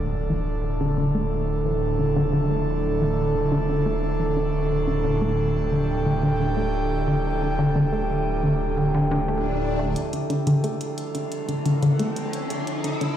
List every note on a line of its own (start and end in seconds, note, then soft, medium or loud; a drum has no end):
0.00 4.52 D1 medium
0.00 9.92 D3 medium
0.00 9.92 F3 medium
0.00 13.17 D4 medium
0.00 9.92 E4 medium
0.00 4.51 A4 medium
0.00 13.17 A4 medium
0.00 impact medium
0.30 0.37 E3 medium
0.64 0.71 D3 medium
0.81 0.92 D3 loud
0.98 1.05 D3 loud
1.15 1.26 A3 medium
1.66 1.73 E3 medium
1.99 2.07 D3 medium
2.16 2.27 D3 loud
2.33 2.41 D3 loud
2.50 2.61 A3 medium
3.01 3.08 E3 medium
3.35 3.42 D3 medium
3.52 3.63 D3 loud
3.69 3.76 D3 loud
3.86 3.97 A3 medium
4.03 4.10 D4 medium
4.20 4.27 E3 medium
4.37 4.41 D4 medium
4.54 9.94 D1 medium
4.54 9.94 G4 medium
4.71 4.78 D3 medium
4.88 4.98 D3 loud
5.05 5.12 D3 loud
5.21 5.32 A3 medium
5.37 10.94 G5 medium
5.72 5.83 D3 medium
6.06 6.13 D3 medium
6.23 6.34 D3 loud
6.40 6.47 D3 loud
6.57 6.68 A3 medium
7.08 7.19 D3 medium
7.42 7.49 D3 medium
7.59 7.70 D3 loud
7.76 7.83 D3 loud
7.93 8.03 A3 medium
8.44 8.54 D3 medium
8.77 8.85 D3 medium
8.94 9.05 D3 loud
9.11 9.19 D3 loud
9.28 9.39 A3 medium
9.28 swell medium
9.79 9.90 A3 medium
9.96 13.17 D3 medium
9.96 13.17 F3 medium
9.96 13.17 E4 medium
9.96 13.17 A4 medium
9.96 closed hi-hat medium
9.96 riser medium
10.13 10.20 D3 medium
10.13 closed hi-hat medium
10.30 10.41 D3 loud
10.30 closed hi-hat medium
10.47 10.54 D3 loud
10.47 closed hi-hat loud
10.64 10.75 A3 medium
10.64 closed hi-hat medium
10.81 closed hi-hat medium
10.98 closed hi-hat medium
11.15 11.26 D3 medium
11.15 closed hi-hat medium
11.32 closed hi-hat medium
11.49 11.56 D3 medium
11.49 closed hi-hat medium
11.66 11.76 D3 loud
11.66 closed hi-hat medium
11.82 11.90 D3 loud
11.82 closed hi-hat medium
11.99 12.10 A3 medium
11.99 closed hi-hat medium
12.16 closed hi-hat medium
12.33 closed hi-hat medium
12.50 12.61 D3 medium
12.50 closed hi-hat loud
12.67 closed hi-hat medium
12.84 12.91 D3 medium
12.84 closed hi-hat medium
13.01 13.12 D3 loud
13.01 closed hi-hat medium